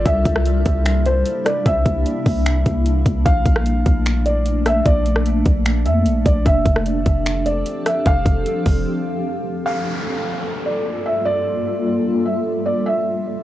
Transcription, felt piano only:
0.06 E5
1.06 C5
1.45 D5
1.66 E5
3.26 F5
4.26 D5
4.67 E5
4.86 D5
5.86 E5
6.26 D5
6.46 E5
7.46 D5
7.86 E5
8.07 F5
9.66 F5
10.66 D5
11.06 E5
11.25 D5
12.26 E5
12.66 D5
12.86 E5

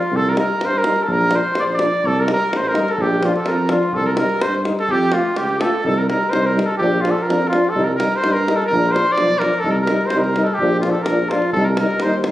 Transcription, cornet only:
Already playing: F4
0.16 A4
0.29 A#4
0.39 A#4
0.66 C5
0.78 A#4
1.03 A4
1.12 A#4
1.35 C5
1.59 C5 D5
1.74 D5
2.06 A4
2.20 A#4
2.32 A#4
2.53 A#4 C5
2.61 C5
2.68 A#4
2.90 A4
3.01 G4
3.25 F4
3.36 A4
3.47 A#4
3.71 F4
3.95 A4
4.06 A#4
4.18 A#4
4.42 C5
4.80 A4
4.91 G4
5.13 F4
5.37 G4
5.61 A4
5.86 A4
5.98 A#4
6.09 A#4
6.30 C5
6.46 A#4
6.66 A4
6.77 G4
7.01 F4
7.11 A4
7.22 A#4
7.48 F4
7.69 A4
7.84 A#4
7.96 A#4
8.16 C5
8.32 A#4
8.56 A4
8.66 A#4
8.92 C5
9.12 D5
9.39 A#4
9.59 A4
9.71 A#4
9.81 A#4
10.06 C5
10.19 A#4
10.44 A4
10.54 G4
10.80 F4
10.91 A4
11.03 A#4
11.29 F4
11.52 A4
11.65 A#4
11.79 A#4
12.03 C5

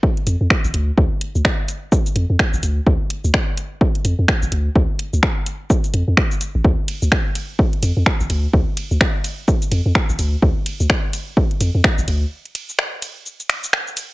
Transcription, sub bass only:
0.27 F2
0.41 F2
0.64 A1
0.74 D2
0.98 D2
1.35 D2
2.16 F2
2.30 F2
2.53 A1
2.63 D2
2.87 D2
3.24 D2
4.05 F2
4.19 F2
4.42 A1
4.52 D2
4.76 D2
5.13 D2
5.94 F2
6.08 F2
6.55 A1
6.64 D2
7.02 D2
7.83 F2
7.97 F2
8.20 A1
8.30 D2
8.53 D2
8.91 D2
9.72 F2
9.86 F2
10.09 A1
10.19 D2
10.42 D2
10.80 D2
11.61 F2
11.75 F2
11.98 A1
12.08 D2

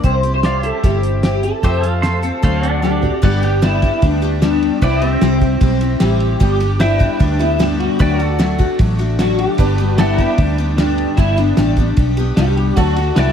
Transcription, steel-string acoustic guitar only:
0.03 C3 G3 C4 E4 G4
0.23 C4 E4 G4
0.43 G3 C4 E4 G4
0.83 C3 G3 C4 E4 G4
1.23 G3 C4 E4 G4
1.43 C4 E4 G4
1.63 F2 C3 F3 A3 C4 A4
1.83 F3 A3 C4 A4
2.03 F3 A3 C4 A4
2.22 F3 A3 C4 A4
2.42 D3 F#3 A3 C4 F#4
2.82 F#3 A3 C4 F#4
3.02 A3 C4 F#4
3.22 G2 D3 G3 B3 D4 G4
3.42 G3 B3 D4 G4
3.62 G2 D3 G3 B3 D4 G4
3.82 G3 B3 D4 G4
4.02 G3 B3 D4 G4
4.22 G3 B3 D4 G4
4.42 G2 D3 G3 B3 D4 G4
4.81 C3 G3 C4 E4 G4
5.01 C4 E4 G4
5.21 C3 G3 C4 E4 G4
5.41 C4 E4 G4
5.60 G3 C4 E4 G4
5.81 C4 E4 G4
6.00 C3 G3 C4 E4 G4
6.40 G2 D3 G3 B3 D4 G4
6.60 G3 B3 D4 G4
6.80 G2 D3 G3 B3 D4 G4
6.99 G3 B3 D4 G4
7.19 G3 B3 D4 G4
7.39 G3 B3 D4 G4
7.59 G2 D3 G3 B3 D4 G4
7.99 D3 F#3 A3 D4 F#4
8.19 A3 D4 F#4
8.39 D3 F#3 A3 D4 F#4
8.59 A3 D4 F#4
8.79 F#3 A3 D4 F#4
8.99 A3 D4 F#4
9.19 D3 F#3 A3 D4 F#4
9.59 G2 D3 G3 B3 D4 G4
9.78 G3 B3 D4 G4
9.98 G2 D3 G3 B3 D4 G4
10.18 G3 B3 D4 G4
10.38 G3 B3 D4 G4
10.58 G3 B3 D4 G4
10.78 G2 D3 G3 B3 D4 G4
11.18 G2 D3 G3 B3 D4 G4
11.37 G3 B3 D4 G4
11.57 G2 D3 G3 B3 D4 G4
11.77 G3 B3 D4 G4
11.97 G3 B3 D4 G4
12.17 G3 B3 D4 G4
12.37 G2 D3 G3 B3 D4 G4
12.77 D3 F#3 A3 D4 F#4
12.96 A3 D4 F#4
13.17 D3 F#3 A3 D4 F#4

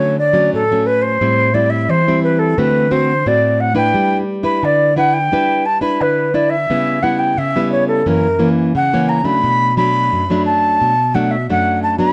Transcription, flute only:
Already playing: C#5
0.18 D5
0.54 A4
0.86 B4
1.02 C5
1.54 D5
1.69 E5
1.89 C5
2.23 B4
2.38 A4
2.58 B4
2.91 C5
3.27 D5
3.60 F#5
3.76 G5
4.44 B5
4.64 D5
4.97 F#5
5.13 G5
5.65 A5
5.81 B5
6.01 B4
6.34 D5
6.49 E5
7.02 F#5
7.18 G5
7.37 E5
7.71 C#5
7.87 A4
8.07 A#4
8.76 F#5
9.08 A#5
9.24 B5
9.77 B5
10.45 A5
11.14 F#5
11.31 E5
11.50 F#5
11.82 A5
11.98 B5

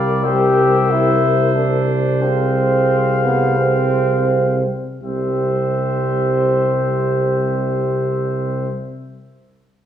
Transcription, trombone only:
Already playing: G3
0.25 G4
0.91 E4
1.55 D4
2.22 C4
3.24 B3
3.59 C4
5.03 C4

